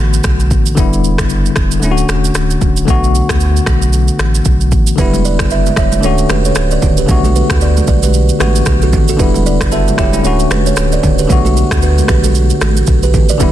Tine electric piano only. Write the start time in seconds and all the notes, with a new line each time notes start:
Already playing: D3 A3 B3 F#4
0.75 D3 G3 B3
0.80 E4
1.80 D3 A3 C#4
1.85 E4
1.91 F#4
2.85 D3 A3 B3
2.90 F#4
4.96 D3 G3 B3
5.01 E4
6.01 D3 A3 C#4
6.06 F#4
7.06 D3 A3 B3
7.11 F#4
8.39 D3 A3 B3 F#4
9.17 D3 G3 B3
9.22 E4
9.72 F#4 A4
9.98 E4 G4
10.13 C#4 E4
10.22 D3 A3 C#4
10.27 F#4
11.27 D3 A3 B3
11.32 F#4
13.38 D3 G3 B3
13.43 E4